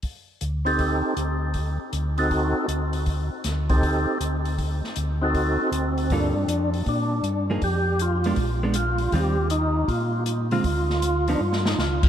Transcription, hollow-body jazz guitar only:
X:1
M:4/4
L:1/8
Q:"Swing" 1/4=158
K:Gm
V:1 name="Hollow-body jazz guitar"
z8 | z8 | z8 | z8 |
[G,B,FA] z6 [F,B,E_A] | z3 [_A,=B,D] z [A,_CD] z2 | [E,G,CF] z6 [D,_A,CF] | z3 [F,=B,E] z4 |]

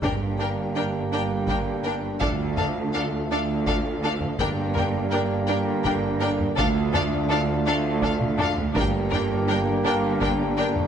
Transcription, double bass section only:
X:1
M:6/8
L:1/8
Q:3/8=55
K:Gm
V:1 name="Double bass section" clef=bass
G,,,3 G,,,3 | D,,3 D,,3 | G,,,3 G,,,3 | D,,3 D,,3 |
G,,,3 G,,,3 |]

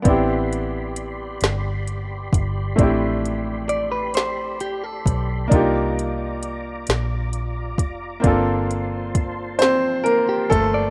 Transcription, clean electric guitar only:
X:1
M:6/8
L:1/16
Q:3/8=44
K:Aphr
V:1 name="Clean electric guitar"
z12 | z4 d =B c2 G A3 | z12 | z8 z G A d |]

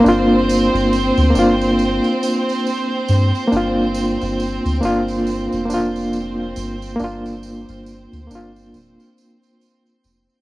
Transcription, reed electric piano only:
X:1
M:4/4
L:1/8
Q:"Swing 16ths" 1/4=69
K:Gm
V:1 name="Reed electric piano"
[B,DF]3 [B,DF]4- [B,DF] | [B,DF]3 [B,DF]2 [B,DF]3 | [B,DF]3 [B,DF]4- [B,DF] |]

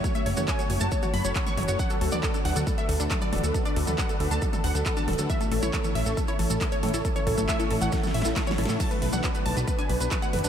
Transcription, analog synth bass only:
X:1
M:4/4
L:1/16
Q:1/4=137
K:A
V:1 name="Analog synth bass" clef=bass
z2 F,,, F,,, z2 F,,, F,,, z2 F,,, F,,, z2 F,,, F,,, | z2 D,, D,, z2 D,, D,, z2 D,, D,, z2 D,,, D,, | z2 D,, D,, z2 D,, D,, z2 D,, D,, z2 D,,, D,, | z2 A,,, A,,, z2 A,,, A,,, z2 A,,, A,,, z2 A,, A,,, |
z2 A,,, A,,, z2 A,,, A,,, z2 A,,, A,,, z2 A,,, A,, | z2 B,,, B,,, z2 B,,, B,,, z2 B,,, B,,, z2 F,,, B,,, |]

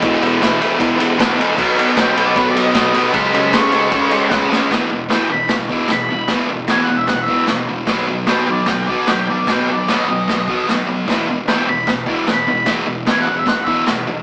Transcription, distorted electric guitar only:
X:1
M:4/4
L:1/8
Q:1/4=151
K:E
V:1 name="Distorted electric guitar" clef=bass
[E,,B,,E,] [E,,B,,E,] [E,,B,,E,] [E,,B,,E,] [E,,B,,E,] [E,,B,,E,] [E,,B,,E,] [E,,B,,E,] | [B,,F,B,] [B,,F,B,] [B,,F,B,] [B,,F,B,] [B,,F,B,] [B,,F,B,] [B,,F,B,] [B,,F,B,] | [C,G,C] [C,G,C] [C,G,C] [C,G,C] [C,G,C] [C,G,C] [C,G,C] [C,G,C] | [E,,B,,E,] [E,,B,,] [E,,B,,E,] [E,,B,,] [E,,B,,] [E,,B,,E,] [E,,B,,] [E,,B,,] |
[E,,B,,E,] [E,,B,,] [E,,B,,E,] [E,,B,,] [E,,B,,] [E,,B,,E,] [E,,B,,] [E,,B,,] | [B,,F,B,] [B,,F,] [B,,F,B,] [B,,F,] [B,,F,] [B,,F,B,] [B,,F,] [B,,F,] | [B,,F,B,] [B,,F,] [B,,F,B,] [B,,F,] [B,,F,] [B,,F,B,] [B,,F,] [B,,F,] | [E,,B,,E,] [E,,B,,] [E,,B,,E,] [E,,B,,] [E,,B,,] [E,,B,,E,] [E,,B,,] [E,,B,,] |
[E,,B,,E,] [E,,B,,] [E,,B,,E,] [E,,B,,] [E,,B,,] [E,,B,,E,] [E,,B,,] [E,,B,,] |]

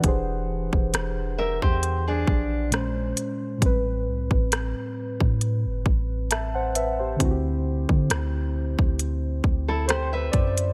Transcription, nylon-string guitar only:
X:1
M:4/4
L:1/16
Q:"Swing 16ths" 1/4=67
K:Ador
V:1 name="Nylon-string guitar"
z6 [_Be] [G^B]2 [D^G]3 z4 | z16 | z8 z3 [EA] [Gc] [Be]3 |]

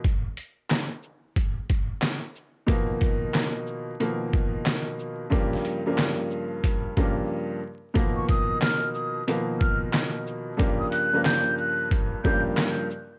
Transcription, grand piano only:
X:1
M:4/4
L:1/16
Q:"Swing 16ths" 1/4=91
K:Blyd
V:1 name="Grand piano" clef=bass
z16 | [B,,D,E,A,]6- [B,,D,E,A,] z [B,,D,E,A,]6- [B,,D,E,A,] z | [=G,,_D,=F,=G,_B,]3 [G,,D,F,G,B,]6 z [G,,D,F,G,B,]4 z2 | [B,,D,E,A,]6- [B,,D,E,A,] z [B,,D,E,A,]6- [B,,D,E,A,] z |
[=G,,_D,=F,=G,_B,]3 [G,,D,F,G,B,]6 z [G,,D,F,G,B,]4 z2 |]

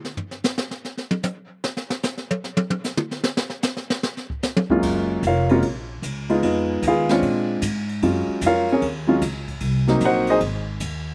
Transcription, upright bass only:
X:1
M:4/4
L:1/8
Q:"Swing" 1/4=150
K:Gblyd
V:1 name="Upright bass" clef=bass
z8 | z8 | z8 | G,,,2 F,,,2 B,,,2 D,,2 |
F,,2 E,,2 B,,2 A,,2 | G,, z F,,2 E,,2 D,,2 | C,,2 B,,,2 A,,,2 E,,2 |]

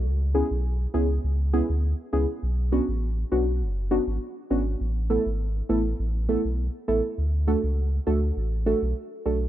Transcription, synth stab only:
X:1
M:4/4
L:1/8
Q:1/4=101
K:A
V:1 name="Synth stab"
z [B,CEG] z [B,CEG] z [B,CEG] z [B,CEG] | z [B,CDF] z [B,CDF] z [B,CDF] z [B,CDF] | z [A,B,EA] z [A,B,EA] z [A,B,EA] z [A,B,EA] | z [A,DFA] z [A,DFA] z [A,DFA] z [A,DFA] |]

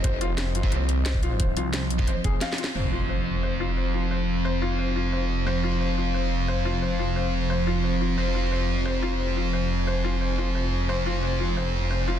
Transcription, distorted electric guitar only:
X:1
M:4/4
L:1/16
Q:1/4=177
K:Fm
V:1 name="Distorted electric guitar"
z6 z [CFc] z8 | z6 z [CFc] z8 | [CFc]16- | [CFc]16 |
[CFc]16- | [CFc]16 | [CFc]16- | [CFc]16 |
[CFc]16 |]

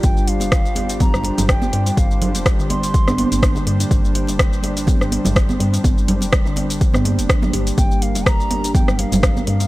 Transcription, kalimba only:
X:1
M:4/4
L:1/16
Q:"Swing 16ths" 1/4=124
K:Gm
V:1 name="Kalimba" clef=bass
G, G, G, G, z2 G, D z G, G, G, z2 G, G, | z2 G, z G, D, G, z2 D B, z2 D, G, D | G, G, G, G, z2 G, D z G, G, G, C z G, G, | z2 G, z G, D, G, z2 D B, z2 B, G z |
G, G, G, G, z2 G, D z G, G, G, C z G, G, |]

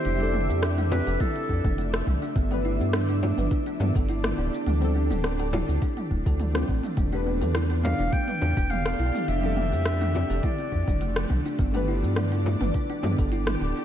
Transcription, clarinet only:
X:1
M:4/4
L:1/8
Q:"Swing 16ths" 1/4=104
K:Ddor
V:1 name="Clarinet"
c2 z B A3 z | z8 | z8 | z3 f g2 f2 |
e4 d3 z | z8 |]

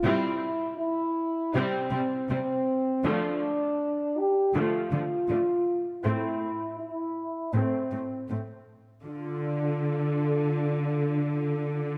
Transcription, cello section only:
X:1
M:4/4
L:1/8
Q:1/4=80
K:Dm
V:1 name="Cello section" clef=bass
C, z3 C, C, C, z | D, z3 D, D, D, z | A,, z3 A,, A,, A,, z | D,8 |]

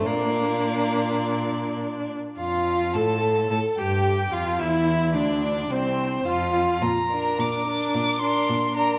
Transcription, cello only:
X:1
M:4/4
L:1/8
Q:1/4=107
K:Bb
V:1 name="Cello" clef=bass
B,,6- B,, z | [K:F] F,,2 A,,2 A,, G,,2 F,, | E,,2 D,,2 C,,2 F,,2 | B,,2 B,,2 B,,2 B,,2 |]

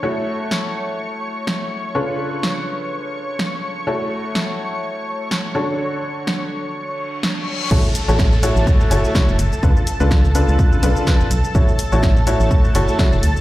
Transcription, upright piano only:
X:1
M:4/4
L:1/16
Q:"Swing 16ths" 1/4=125
K:A
V:1 name="Upright piano"
[A,EFAc]16 | [C,D^EABc]16 | [A,EFAc]12- [A,EFAc]2 [D,DFAc]2- | [D,DFAc]16 |
[A,EFAc] z2 [A,EFAc]2 z [A,EFAc]4 [A,EFAc]2 [A,EFAc]2 z2 | [C,D^EAB] z2 [C,DEAB]2 z [C,DEAB]4 [C,DEAB]2 [C,DEAB]2 z2 | [A,EFAc] z2 [A,EFAc]2 z [A,EFAc]4 [A,EFAc]2 [EFAc]2 z2 |]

